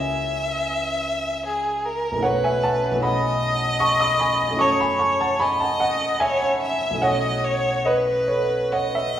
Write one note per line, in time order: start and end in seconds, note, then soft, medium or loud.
0.00 2.14 C#2 medium
0.00 2.15 A#3 medium
0.00 2.15 C#4 medium
0.00 2.17 E4 medium
0.00 2.18 F#4 medium
0.00 0.64 E5 medium
0.00 1.43 E5 medium
0.00 0.67 G#5 medium
1.45 1.86 G#4 medium
1.85 2.25 A#4 medium
2.12 2.90 B1 medium
2.12 2.92 A3 medium
2.16 2.95 C#4 medium
2.16 2.97 E4 medium
2.21 3.00 F#4 medium
2.21 3.02 B4 medium
2.21 2.42 C#5 medium
2.21 2.43 F#5 loud
2.44 2.63 E5 medium
2.44 2.64 G#5 loud
2.63 3.01 F#5 medium
2.63 3.03 A5 loud
2.91 4.50 B1 medium
2.91 4.49 A3 medium
2.96 4.51 C#4 medium
2.96 4.54 E4 medium
3.01 4.55 F#4 medium
3.01 4.62 D#5 loud
3.01 3.78 F#5 medium
3.01 3.81 B5 loud
3.80 4.00 A5 medium
3.80 4.00 C#6 loud
4.00 4.18 B5 medium
4.00 4.20 D#6 loud
4.20 4.58 G#5 medium
4.20 4.60 B5 loud
4.48 6.93 F#2 medium
4.48 6.92 A3 medium
4.53 6.94 C#4 medium
4.53 6.96 E4 medium
4.57 6.97 F#4 medium
4.57 5.43 C#5 medium
4.57 4.79 A5 medium
4.57 4.79 C#6 loud
4.80 4.99 G#5 medium
4.80 5.00 B5 loud
4.99 5.19 A5 medium
4.99 5.20 C#6 loud
5.21 5.40 F#5 medium
5.21 5.41 A5 loud
5.40 6.24 D#5 medium
5.40 5.60 G#5 medium
5.40 5.60 B5 loud
5.60 5.79 F#5 medium
5.60 5.80 A5 loud
5.80 6.18 D#5 medium
5.80 6.21 F#5 loud
6.20 6.62 C#5 medium
6.20 6.98 E5 medium
6.20 7.02 G#5 loud
6.62 7.05 E5 medium
6.91 9.20 B1 medium
6.91 9.20 A3 medium
6.95 9.20 C#4 medium
6.95 9.20 E4 medium
7.00 9.20 F#4 medium
7.00 7.82 C#5 medium
7.00 7.46 D#5 medium
7.00 7.86 F#5 loud
7.44 7.88 C#5 medium
7.85 8.26 B4 medium
7.85 8.74 B4 medium
7.85 8.29 D#5 loud
8.28 8.70 A4 medium
8.28 8.72 C#5 medium
8.73 8.94 C#5 medium
8.73 9.20 D#5 medium
8.73 8.95 F#5 medium
8.95 9.17 C#5 medium
8.95 9.18 E5 medium